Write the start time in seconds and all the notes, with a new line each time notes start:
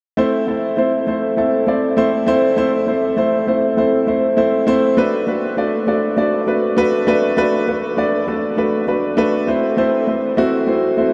0.17 A3 C4 E4 C5
0.47 A3 C4 E4 A4
0.77 A3 C4 E4 C5
1.07 A3 C4 E4 C5
1.37 A3 C4 E4 A4
1.67 A3 C4 E4 D5
1.97 A3 C4 E4 C5
2.27 A3 C4 E4 C5
2.57 A3 C4 E4 C5
2.87 A3 C4 E4 C5
3.17 A3 C4 E4 C5
3.47 A3 C4 E4 C5
3.77 A3 C4 E4 C5
4.07 A3 C4 E4 C5
4.37 A3 C4 E4 C5
4.67 A3 C4 E4 C5
4.97 A3 D4 F#4 B4
5.27 A3 D4 F#4 B4
5.57 A3 D4 F#4 D5
5.87 A3 D4 F#4 D5
6.17 A3 D4 F#4 D5
6.47 A3 D4 F#4 B4
6.77 A3 D4 F#4 B4
7.07 A3 D4 F#4 B4
7.37 A3 D4 F#4 B4
7.67 A3 D4 F#4 B4
7.97 A3 D4 F#4 D5
8.27 A3 D4 F#4 A4
8.57 A3 D4 F#4 B4
8.87 A3 D4 F#4 B4
9.17 A3 D4 F#4 B4
9.47 A3 C4 E4 C5
9.77 A3 C4 E4 C5
10.07 A3 C4 E4 C5
10.37 A3 C4 E4 F#4
10.67 A3 C4 E4 C5
10.97 A3 C4 E4 C5